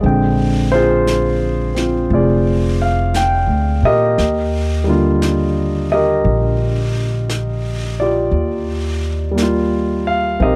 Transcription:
0.01 2.06 A#1 medium
0.01 4.18 D3 soft
0.01 4.16 G#3 soft
0.01 1.73 C4 soft
0.01 brush sweep soft
0.06 3.15 G5 soft
0.72 1.76 F4 medium
0.72 2.12 G#4 soft
0.72 1.71 C5 medium
1.07 brush sweep soft
1.07 snare soft
1.07 hi-hat pedal soft
1.75 4.17 C4 soft
1.75 2.12 F4 soft
1.75 snare soft
2.10 3.44 F1 medium
2.10 4.15 F4 soft
2.10 4.15 G#4 soft
2.10 brush sweep soft
2.14 2.77 D5 soft
2.82 3.16 F5 medium
3.14 3.85 G5 medium
3.14 brush sweep soft
3.14 snare soft
3.14 hi-hat pedal soft
3.47 3.80 D2 soft
3.83 4.15 A#2 medium
3.83 5.88 G4 soft
3.83 5.88 A#4 soft
3.83 5.90 D#5 medium
4.18 6.22 D#2 medium
4.18 brush sweep soft
4.18 snare soft
4.84 8.34 D3 soft
4.84 8.32 G3 soft
4.84 8.33 A#3 soft
4.89 8.00 F4 soft
5.22 brush sweep soft
5.22 snare soft
5.22 hi-hat pedal soft
5.92 7.95 G4 soft
5.92 7.96 A#4 soft
5.92 8.05 D#5 medium
6.25 8.29 A#1 medium
6.25 brush sweep soft
7.30 brush sweep soft
7.30 snare soft
7.30 hi-hat pedal soft
8.00 9.41 F4 soft
8.00 10.04 G4 soft
8.00 9.34 D5 medium
8.31 10.37 D#2 medium
8.31 brush sweep soft
9.31 10.56 G3 soft
9.31 10.56 A#3 soft
9.38 brush sweep soft
9.38 snare soft
9.38 hi-hat pedal soft
9.42 10.56 F4 soft
10.07 10.40 F5 medium
10.40 10.56 A#1 medium
10.40 10.56 C4 soft
10.40 10.56 D#4 soft
10.40 10.56 G4 soft
10.40 10.56 D#5 medium
10.40 brush sweep soft
10.44 10.56 A#4 soft

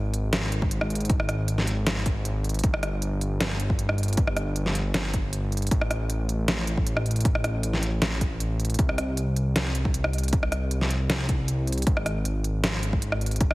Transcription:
0.00 2.62 G#1 medium
0.14 closed hi-hat medium
0.33 snare loud
0.33 closed hi-hat medium
0.52 closed hi-hat medium
0.62 kick medium
0.71 closed hi-hat medium
0.81 cross-stick medium
0.90 closed hi-hat soft
0.95 closed hi-hat medium
1.01 closed hi-hat soft
1.05 closed hi-hat medium
1.10 kick loud
1.10 closed hi-hat medium
1.20 cross-stick medium
1.29 cross-stick medium
1.29 closed hi-hat medium
1.48 closed hi-hat medium
1.58 snare soft
1.67 closed hi-hat medium
1.87 snare loud
1.87 closed hi-hat medium
2.06 kick medium
2.06 closed hi-hat medium
2.25 closed hi-hat medium
2.44 closed hi-hat soft
2.49 closed hi-hat medium
2.54 closed hi-hat soft
2.59 closed hi-hat medium
2.64 5.69 G1 medium
2.64 kick loud
2.64 closed hi-hat medium
2.74 cross-stick medium
2.83 cross-stick medium
2.83 closed hi-hat medium
3.02 closed hi-hat medium
3.21 closed hi-hat medium
3.41 snare loud
3.41 closed hi-hat medium
3.60 closed hi-hat medium
3.70 kick medium
3.79 closed hi-hat medium
3.89 cross-stick medium
3.98 closed hi-hat soft
4.03 closed hi-hat medium
4.08 closed hi-hat soft
4.13 closed hi-hat medium
4.17 kick loud
4.17 closed hi-hat medium
4.27 cross-stick medium
4.37 cross-stick medium
4.37 closed hi-hat medium
4.56 closed hi-hat medium
4.66 snare soft
4.75 closed hi-hat medium
4.94 snare loud
4.94 closed hi-hat medium
5.14 kick medium
5.14 closed hi-hat medium
5.33 closed hi-hat medium
5.52 closed hi-hat soft
5.57 closed hi-hat medium
5.62 closed hi-hat soft
5.67 closed hi-hat medium
5.71 8.77 A1 medium
5.71 kick loud
5.71 closed hi-hat medium
5.81 cross-stick medium
5.91 cross-stick medium
5.91 closed hi-hat medium
6.10 closed hi-hat medium
6.29 closed hi-hat medium
6.48 snare loud
6.48 closed hi-hat medium
6.67 closed hi-hat medium
6.78 kick medium
6.87 closed hi-hat medium
6.97 cross-stick medium
7.06 closed hi-hat soft
7.11 closed hi-hat medium
7.16 closed hi-hat soft
7.21 closed hi-hat medium
7.25 kick loud
7.25 closed hi-hat medium
7.35 cross-stick medium
7.44 cross-stick medium
7.44 closed hi-hat medium
7.63 closed hi-hat medium
7.73 snare soft
7.83 closed hi-hat medium
8.02 snare loud
8.02 closed hi-hat medium
8.21 kick medium
8.21 closed hi-hat medium
8.40 closed hi-hat medium
8.60 closed hi-hat medium
8.65 closed hi-hat medium
8.70 closed hi-hat medium
8.74 closed hi-hat medium
8.79 11.85 C2 medium
8.79 kick loud
8.79 closed hi-hat medium
8.89 cross-stick medium
8.98 cross-stick medium
8.98 closed hi-hat medium
9.17 closed hi-hat medium
9.36 closed hi-hat medium
9.56 snare loud
9.56 closed hi-hat medium
9.75 closed hi-hat medium
9.85 kick medium
9.94 closed hi-hat medium
10.04 cross-stick medium
10.13 closed hi-hat soft
10.18 closed hi-hat medium
10.24 closed hi-hat medium
10.28 closed hi-hat medium
10.33 kick loud
10.33 closed hi-hat medium
10.43 cross-stick medium
10.52 cross-stick medium
10.52 closed hi-hat medium
10.71 closed hi-hat medium
10.81 snare soft
10.90 closed hi-hat medium
11.10 snare loud
11.10 closed hi-hat medium
11.29 kick medium
11.29 closed hi-hat medium
11.48 closed hi-hat medium
11.67 closed hi-hat medium
11.72 closed hi-hat medium
11.78 closed hi-hat medium
11.82 closed hi-hat medium
11.87 13.54 G#1 medium
11.87 kick loud
11.87 closed hi-hat medium
11.97 cross-stick medium
12.06 cross-stick medium
12.06 closed hi-hat medium
12.25 closed hi-hat medium
12.44 closed hi-hat medium
12.64 snare loud
12.64 closed hi-hat medium
12.83 closed hi-hat medium
12.93 kick medium
13.02 closed hi-hat medium
13.12 cross-stick medium
13.21 closed hi-hat soft
13.26 closed hi-hat medium
13.31 closed hi-hat soft
13.36 closed hi-hat medium
13.41 kick loud
13.41 closed hi-hat medium
13.51 cross-stick medium

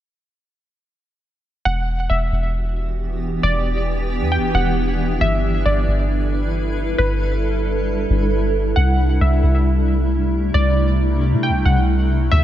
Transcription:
1.65 2.08 E1 loud
1.65 5.17 E3 medium
1.65 5.17 B3 medium
1.65 12.28 D4 medium
1.65 3.41 F#4 medium
1.65 5.17 G4 medium
1.65 2.07 F#5 loud
2.10 2.31 E1 loud
2.10 2.52 E5 medium
2.32 3.39 E1 loud
3.43 4.22 E1 loud
3.43 5.19 E4 medium
3.43 4.28 D5 loud
4.21 4.39 E2 medium
4.32 4.53 G5 medium
4.38 4.54 E1 medium
4.54 5.18 E1 loud
4.54 5.17 F#5 medium
5.21 5.64 G1 loud
5.21 12.28 G3 medium
5.21 12.28 E4 medium
5.21 8.73 A4 medium
5.21 8.73 B4 medium
5.21 5.63 E5 loud
5.65 5.87 G1 loud
5.65 6.07 D5 medium
5.88 6.95 G1 loud
6.98 8.06 G1 loud
6.98 8.28 B4 loud
8.10 8.74 G1 loud
8.76 9.19 C2 loud
8.76 12.29 C3 medium
8.76 12.44 A3 medium
8.76 9.18 F#5 loud
9.21 9.42 C2 loud
9.21 9.63 E5 medium
9.43 10.50 C2 loud
10.54 11.34 C2 loud
10.54 11.39 D5 loud
11.32 11.50 C3 loud
11.43 11.64 G5 medium
11.49 11.65 C2 loud
11.65 12.29 C2 loud
11.65 12.28 F#5 medium
12.31 12.44 D2 loud
12.31 12.44 E5 loud

